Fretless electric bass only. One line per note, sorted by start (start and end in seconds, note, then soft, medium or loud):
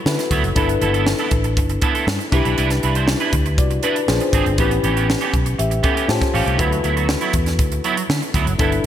0.06 0.16 D3 medium
0.31 0.41 D2 medium
0.43 0.54 F#1 medium
0.56 0.77 G1 medium
0.81 1.12 G1 loud
1.31 1.57 A1 medium
1.57 1.77 G1 medium
2.07 2.17 G2 loud
2.32 2.43 C2 medium
2.45 2.55 B1 medium
2.58 2.78 C2 medium
2.84 3.14 C2 medium
3.32 3.58 D2 medium
3.58 3.78 C2 medium
4.08 4.18 A#1 loud
4.33 4.43 G#1 medium
4.46 4.56 G1 medium
4.58 4.79 A1 medium
4.83 5.14 A1 medium
5.33 5.54 B1 medium
5.59 5.79 A1 medium
6.08 6.19 A2 medium
6.34 6.44 A1 medium
6.46 6.57 C2 medium
6.59 6.80 D2 loud
6.84 7.15 D2 medium
7.34 7.59 E2 medium
7.59 7.80 D2 medium
8.09 8.20 D3 medium
8.34 8.45 D2 medium
8.46 8.57 F#1 medium
8.59 8.80 G1 medium